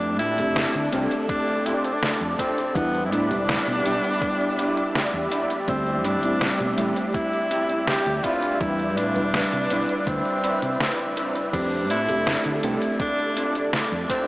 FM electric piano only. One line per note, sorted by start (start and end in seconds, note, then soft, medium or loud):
0.00 0.33 A3 medium
0.00 0.33 C4 medium
0.00 0.34 D4 medium
0.00 0.34 G4 loud
0.38 0.88 A3 medium
0.38 0.88 C4 medium
0.38 0.89 D4 medium
0.38 0.89 G4 medium
0.92 1.22 A3 medium
0.92 1.22 C4 medium
0.92 1.22 D4 medium
0.92 1.22 G4 medium
2.75 3.26 G3 loud
2.75 3.26 B3 medium
2.75 3.26 D4 medium
2.75 3.27 E4 loud
3.30 3.81 G3 medium
3.30 3.81 B3 medium
3.30 3.81 D4 medium
3.30 3.82 E4 medium
3.84 5.63 G3 medium
3.84 5.64 B3 medium
3.84 5.64 D4 medium
3.84 5.65 E4 medium
5.67 6.19 G3 medium
5.67 6.19 A3 medium
5.67 6.19 C4 medium
5.67 6.19 E4 loud
6.23 6.73 G3 medium
6.23 6.74 A3 medium
6.23 6.74 C4 medium
6.23 6.74 E4 medium
6.77 7.07 G3 medium
6.77 7.07 A3 medium
6.77 7.07 C4 medium
6.77 7.08 E4 medium
8.60 9.11 G3 loud
8.60 9.12 D4 medium
8.60 9.12 E4 loud
8.60 9.12 B4 medium
9.15 9.66 G3 medium
9.15 9.67 D4 medium
9.15 9.67 E4 medium
9.15 9.66 B4 medium
9.70 11.49 G3 medium
9.70 11.50 D4 medium
9.70 11.50 E4 medium
9.70 11.49 B4 medium
11.53 12.04 A3 medium
11.53 12.04 C4 medium
11.53 12.04 D4 medium
11.53 12.05 G4 loud
12.08 12.59 A3 medium
12.08 12.59 C4 medium
12.08 12.59 D4 medium
12.08 12.59 G4 medium
12.62 12.92 A3 medium
12.62 12.93 C4 medium
12.62 12.93 D4 medium
12.62 12.93 G4 medium